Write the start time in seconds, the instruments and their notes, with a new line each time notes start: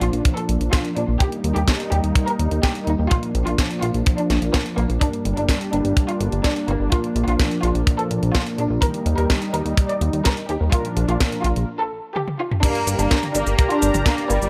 Already playing: analog polysynth A#2 A#3 D4 F4 A#4, analog synth pad F3 A#3 D4
0.01 analog synth bass A#1, violin section F4, closed hi-hat
0.13 analog synth bass A#1, closed hi-hat
0.25 kick, closed hi-hat
0.37 violin section A4, closed hi-hat
0.49 analog synth bass A#1, closed hi-hat
0.61 analog synth bass A#1, closed hi-hat
0.73 violin section F4, kick, snare, closed hi-hat
0.85 closed hi-hat
0.96 analog synth bass A#1, violin section D4, closed hi-hat
1.08 analog synth bass A#1
1.20 analog polysynth D#3 A#3 D#4 G4 A#4, analog synth pad G3 D#4, violin section G4, kick, closed hi-hat
1.32 closed hi-hat
1.44 analog synth bass D#2, closed hi-hat
1.56 analog synth bass D#2, analog polysynth D#3 A#3 D#4 G4 A#4, violin section G4, closed hi-hat
1.68 kick, snare, closed hi-hat
1.80 closed hi-hat
1.92 analog synth bass D#2, violin section G4, closed hi-hat
2.04 analog synth bass D#2, closed hi-hat
2.15 kick, closed hi-hat
2.28 violin section A#4, closed hi-hat
2.39 analog synth bass D#2, closed hi-hat
2.51 analog synth bass D#2, closed hi-hat
2.63 violin section G4, kick, snare, closed hi-hat
2.75 closed hi-hat
2.87 analog synth bass D#2, violin section D#4, closed hi-hat
2.99 analog synth bass D#2
3.11 analog polysynth A#2 A#3 D4 F4 A#4, analog synth pad F3 D4, violin section F4, kick, closed hi-hat
3.23 closed hi-hat
3.35 analog synth bass A#1, closed hi-hat
3.47 analog synth bass A#1, analog polysynth A#2 A#3 D4 F4 A#4, violin section F4, closed hi-hat
3.58 kick, snare, closed hi-hat
3.71 closed hi-hat
3.82 analog synth bass A#1, violin section F4, closed hi-hat
3.94 analog synth bass A#1, closed hi-hat
4.06 kick, closed hi-hat
4.18 violin section D4, closed hi-hat
4.30 analog synth bass A#1, snare, closed hi-hat
4.42 analog synth bass A#1, analog polysynth A#2 A#3 D4 F4 A#4, closed hi-hat
4.54 violin section A#3, kick, snare, closed hi-hat
4.66 closed hi-hat
4.78 analog synth bass A#1, violin section A#3, closed hi-hat
4.90 analog synth bass A#1, closed hi-hat
5.01 analog polysynth G2 A#3 D4 G4 A#4, analog synth pad G3 A#3, violin section D4, kick, closed hi-hat
5.13 closed hi-hat
5.25 analog synth bass G1, closed hi-hat
5.37 analog synth bass G1, analog polysynth G2 A#3 D4 G4 A#4, violin section D4, closed hi-hat
5.49 kick, snare, closed hi-hat
5.61 closed hi-hat
5.73 analog synth bass G1, violin section D4, closed hi-hat
5.85 analog synth bass G1, closed hi-hat
5.97 kick, closed hi-hat
6.09 violin section F4, closed hi-hat
6.21 analog synth bass G1, closed hi-hat
6.32 analog synth bass G1, closed hi-hat
6.44 violin section D4, kick, snare, closed hi-hat
6.56 closed hi-hat
6.68 analog synth bass G1, violin section A#3, closed hi-hat
6.80 analog synth bass G1
6.92 analog polysynth A#2 A#3 D4 F4 A#4, analog synth pad F3, violin section F4, kick, closed hi-hat
7.04 closed hi-hat
7.16 analog synth bass A#1, closed hi-hat
7.27 analog synth bass A#1, analog polysynth A#2 A#3 D4 F4 A#4, violin section F4, closed hi-hat
7.39 kick, snare, closed hi-hat
7.51 closed hi-hat
7.63 analog synth bass A#1, violin section F4, closed hi-hat
7.75 analog synth bass A#1, closed hi-hat
7.87 kick, closed hi-hat
7.99 violin section A4, closed hi-hat
8.11 analog synth bass A#1, closed hi-hat
8.23 analog synth bass A#1, closed hi-hat
8.35 violin section F4, kick, snare, closed hi-hat
8.46 closed hi-hat
8.58 analog synth bass A#1, violin section D4, closed hi-hat
8.70 analog synth bass A#1
8.82 analog polysynth D#3 A#3 D#4 G4 A#4, analog synth pad G3 D#4, violin section A#4, kick, closed hi-hat
8.94 closed hi-hat
9.06 analog synth bass D#2, closed hi-hat
9.18 analog synth bass D#2, analog polysynth D#3 A#3 D#4 G4 A#4, violin section A#4, closed hi-hat
9.30 kick, snare, closed hi-hat
9.42 closed hi-hat
9.54 analog synth bass D#2, violin section A#4, closed hi-hat
9.65 analog synth bass D#2, closed hi-hat
9.77 kick, closed hi-hat
9.89 violin section D5, closed hi-hat
10.01 analog synth bass D#2, closed hi-hat
10.13 analog synth bass D#2, closed hi-hat
10.25 violin section A#4, kick, snare, closed hi-hat
10.37 closed hi-hat
10.49 analog synth bass D#2, violin section G4, closed hi-hat
10.61 analog synth bass D#2
10.72 analog polysynth A#2 A#3 D4 F4 A#4, analog synth pad F3 D4, violin section F4, kick, closed hi-hat
10.85 closed hi-hat
10.97 analog synth bass A#1, closed hi-hat
11.08 analog synth bass A#1, analog polysynth A#2 A#3 D4 F4 A#4, violin section F4, closed hi-hat
11.20 kick, snare, closed hi-hat
11.32 closed hi-hat
11.44 analog synth bass A#1, violin section F4, closed hi-hat
11.56 analog synth bass A#1, closed hi-hat
11.80 violin section A4
12.16 violin section G4, high tom
12.28 high tom
12.39 violin section F4
12.52 mid tom
12.63 analog polysynth G2 A#3 D4 G4 A#4, violin section A#3 D4, analog synth pad G4 A#4 D5 A#5, kick, closed hi-hat, crash, cabasa
12.75 closed hi-hat
12.87 analog synth bass G1, closed hi-hat, cabasa
12.99 analog synth bass G1, analog polysynth G2 A#3 D4 G4 A#4, violin section A#3 D4, closed hi-hat, cabasa
13.11 kick, snare, closed hi-hat, cabasa
13.23 closed hi-hat, high tom
13.35 analog synth bass G1, violin section A#3 D4, closed hi-hat, cabasa
13.47 analog synth bass G1, closed hi-hat, cabasa
13.59 kick, closed hi-hat, cabasa
13.70 violin section D4 F4, closed hi-hat
13.82 analog synth bass G1, closed hi-hat, cabasa
13.94 analog synth bass G1, closed hi-hat, high tom, cabasa
14.06 violin section A#3 D4, kick, snare, closed hi-hat, cabasa
14.18 closed hi-hat
14.30 analog synth bass G1, violin section G3 A#3, closed hi-hat, cabasa
14.42 analog synth bass G1, cabasa